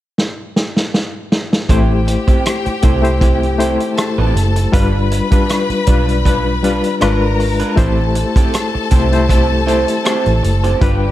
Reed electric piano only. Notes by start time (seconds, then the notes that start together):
1.69 A3 E4 G4 C5
2.83 A3 E4 G4 C5
3.02 A3 E4 G4 C5
3.58 A3 E4 G4 C5
4.72 G3 D4 F4 B4
5.31 G3 D4 F4 B4
5.87 G3 D4 F4 B4
6.63 G3 D4 F4 B4
7.01 G#3 D4 F4 B4
7.76 A3 E4 G4 C5
8.91 A3 E4 G4 C5
9.12 A3 E4 G4 C5
9.67 A3 E4 G4 C5
10.81 G3 D4 F4 B4